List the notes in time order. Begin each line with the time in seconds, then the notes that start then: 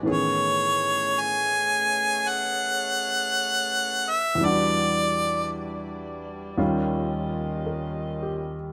Already playing: B4
0.03 A2 E3 A3 B3 C#4 G#4 C#5
0.07 D#3 G#4 C#5
1.20 G#5
2.28 F#5
4.10 E5
4.35 E2 E3
4.40 G3 D4 E4 D5
4.45 F#4 D5
6.56 D#2 D#3 G3 C#4 F4 A#4 D#5
7.66 A#4
8.23 G4